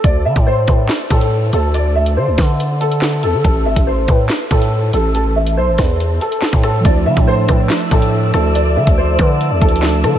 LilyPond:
<<
  \new Staff \with { instrumentName = "Ambient pad" } { \time 4/4 \key d \dorian \tempo 4 = 141 r1 | r1 | r1 | r1 |
<d'' e'' a'' e'''>1~ | <d'' e'' a'' e'''>1 | }
  \new Staff \with { instrumentName = "Grand piano" } { \time 4/4 \key d \dorian d''8 e''8 c''8 b'8 r8 a'4 a'8 | d''8 e''8 c''8 b'8 r8 a'4 a'8 | a'8 e''8 c''8 b'8 r8 a'4 a'8 | a'8 e''8 c''8 b'8 r8 a'4 a'8 |
d''8 e''8 c''8 b'8 r8 a'4 a'8 | d''8 e''8 c''8 b'8 r8 a'4 a'8 | }
  \new Staff \with { instrumentName = "Tine electric piano" } { \time 4/4 \key d \dorian r1 | r1 | r1 | r1 |
<f a d' e'>1~ | <f a d' e'>2~ <f a d' e'>8 <f a d' e'>4. | }
  \new Staff \with { instrumentName = "808-style bass" } { \clef bass \time 4/4 \key d \dorian d,8 d16 a,8. a,8 r8 a,4 d,8~ | d,4 d16 d,16 d2 e,16 d16 | a,,8 gis,,16 a,,8. a,8 r8 a,4 a,,8~ | a,,4 b,,16 a,,16 e,4 r8. a,8. |
d,8 d16 a,8. a,8 r8 a,4 d,8~ | d,8 d16 d,8. d8. e,16 d,4 d16 d,16 | }
  \new DrumStaff \with { instrumentName = "Drums" } \drummode { \time 4/4 <hh bd>8. <hh bd>16 r8 <hh bd>8 <hc hh sn>8 <hh bd>16 hh16 r8 hh8 | hh8. hh16 r8 <hh bd sn>8 hh8 hh16 hh16 <hc sn>8 hh8 | <hh bd>8. <hh bd>16 r8 <hh bd>8 <hc hh sn>8 <hh bd>16 hh16 r8 hh8 | hh8. hh16 r8 <hh bd ss sn>8 hh8 hh16 hh16 <hc sn>16 bd16 <hh ss>8 |
<hh bd>8. <hh bd>16 r8 <hh bd ss>8 <hc hh sn>8 <hh bd>16 hh16 r8 <hh ss>8 | hh8. <hh bd>16 r8 <hh bd ss>8 \tuplet 3/2 { hh16 r16 r16 <hh bd>16 hh16 hh16 } <hc sn>8 <hh ss>8 | }
>>